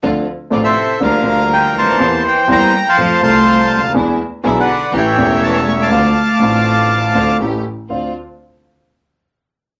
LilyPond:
<<
  \new Staff \with { instrumentName = "Bandoneon" } { \time 4/4 \key d \minor \tempo 4 = 122 << { r4 d''16 e''8. f''4 g''8 a''8~ | a''8 g''8 bes''8. a''8. c'''4 r8 | r4 e''16 fis''8. g''4 a''8 cis'''16 d'''16~ | d'''2. r4 |
r1 | } \\ { r4 r16 <a' c''>8. bes'4. c''8~ | c''4 g''8. <c'' f''>8. <f'' a''>4. | r4 r16 <b' d''>8. <cis'' e''>4.~ <cis'' e''>16 <f'' a''>16~ | <f'' a''>2. r4 |
r1 | } >> }
  \new Staff \with { instrumentName = "String section" } { \time 4/4 \key d \minor <c' d' f'>8 r8 <c' d' f'>8 r8 <g bes f'>8 <g bes f'>4. | <bes c' e'>8 r8 <bes c' e'>8 r8 <a c' f'>8 <a c' f'>4. | <gis d' e'>8 r8 <gis d' e'>8 r8 <a cis' g'>8 <a cis' g'>4. | <c' d' f'>8 r8 <c' d' f'>4. <c' d' f'>8 <a cis' g'>8 r8 |
<c' d' f'>8 r2. r8 | }
  \new Staff \with { instrumentName = "Grand piano" } { \time 4/4 \key d \minor << { <d, d f c' d' a'>8 r8 <a,, a, f c' d' a'>8 r8 <d, d f bes d' g'>8 <d, d f bes d' g'>4. | <e, e bes c' g'>8 r8 <e, e bes c' g'>8 r8 <f, f a c' a'>8 <c, c f a c' a'>4. | <e, e b d' gis'>8 r8 <b,, b, e b d' gis'>8 r8 <a,, a, e a cis' g'>8 <e,, e, e a cis' g'>4. | <d, d a c' f'>8 r8 <a,, a, d a c' f'>4. <d, d a c' f'>8 <a,, a, e a cis' g'>8 r8 |
<d, c' d' f'>8 r2. r8 | } \\ { r2. r8 r32 cis,32 d,32 ees,32 | r2. r8 r32 cis,32 d,32 ees,32 | r1 | r1 |
r1 | } >> }
  \new Staff \with { instrumentName = "Cello" } { \clef bass \time 4/4 \key d \minor r4 a,16 c8. d4 d8 e8~ | e8 e8 g8. f8. a4 r8 | r4 b,16 d8. e4 e8 a16 a16~ | a2. r4 |
r1 | }
  \new Staff \with { instrumentName = "Double bass" } { \clef bass \time 4/4 \key d \minor d,8 r8 a,,8 r8 d,8 d,4 d,8 | e,8 r8 e,8 r8 f,8 c,4 d,8 | e,8 r8 b,,8 r8 a,,8 e,,4. | d,8 r8 a,,4. d,8 a,,8 r8 |
d,8 r2. r8 | }
>>